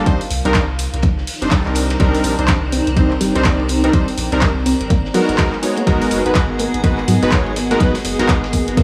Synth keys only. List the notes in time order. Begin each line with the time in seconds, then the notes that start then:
0.06 G3 C4 D4 D#4 C5
0.45 G3 C4 D4 D#4 A#4
1.42 G3 C4 D4 D#4 C5
1.51 G3 C4 D4 D#4 A4
1.66 G3 C4 D4 D#4 A#4
2.00 G3 C4 D4 D#4 A#4
2.38 G3 C4 D4 D#4 C5
2.96 G3 C4 D4 D#4 C5
3.35 G3 C4 D4 D#4 C5
3.45 G3 C4 D4 D#4 D5
3.84 G3 C4 D4 D#4 A#4
3.93 G3 C4 D4 D#4 C5
4.32 G3 C4 D4 D#4 A#4
5.14 G#3 B3 D#4 F#4 A#4
5.38 G#3 B3 D#4 F#4 A#4
5.62 G#3 B3 D#4 F#4 C#5
5.87 G#3 B3 D#4 F#4 A#4
6.26 G#3 B3 D#4 F#4 B4
6.83 G#3 B3 D#4 F#4 B4
7.22 G#3 B3 D#4 F#4 B4
7.32 G#3 D#4 F#4 C#5
7.71 G#3 B3 D#4 F#4 A#4
7.80 G#3 B3 D#4 F#4 B4
8.19 G#3 B3 D#4 F#4 A#4